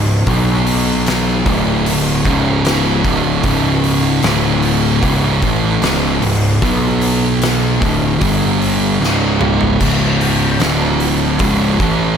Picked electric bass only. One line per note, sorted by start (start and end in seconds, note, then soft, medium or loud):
0.00 0.24 C#1 medium
0.27 1.42 B1 loud
1.46 2.21 D1 medium
2.25 3.01 C#1 medium
3.04 3.42 D1 medium
3.44 4.20 C#1 loud
4.23 4.99 D1 loud
5.03 5.40 C#1 loud
5.42 5.80 A1 medium
5.81 6.19 C#1 medium
6.22 6.59 C#1 medium
6.62 7.78 B1 medium
7.82 8.19 D1 medium
8.21 8.97 G1 medium
9.00 9.77 C#1 medium
9.80 10.57 C#1 loud
10.60 11.37 D1 medium
11.40 11.78 C#1 loud
11.79 12.17 A1 loud